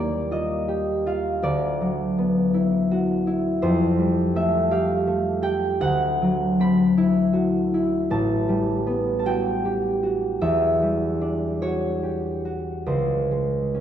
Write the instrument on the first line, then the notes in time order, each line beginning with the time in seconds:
harp
Already playing: D#2 G3 A#3 A#4 D5
0.31 F4 D#5
0.68 G4
1.06 F4 F5
1.43 D2 D5
1.81 F#3
2.18 B3
2.54 E4
2.91 F#4
3.27 E4
3.62 F2 C5
3.99 G3
4.36 A3 E5
4.71 G4 F5
5.07 A3
5.42 G4 G5
5.80 D2 F#5
6.22 F#3
6.60 C4 B5
6.97 E4
7.33 F#4
7.74 E4
8.10 A1 A5
8.49 G3
8.87 B3
9.19 A5
9.25 F#4 G5
9.65 G4
10.03 F#4
10.41 E2 E5
10.82 G3
11.21 D4
11.62 F#4 C#5
12.03 G4
12.45 F#4
12.86 C#2 C5
13.31 G#3
13.74 C#4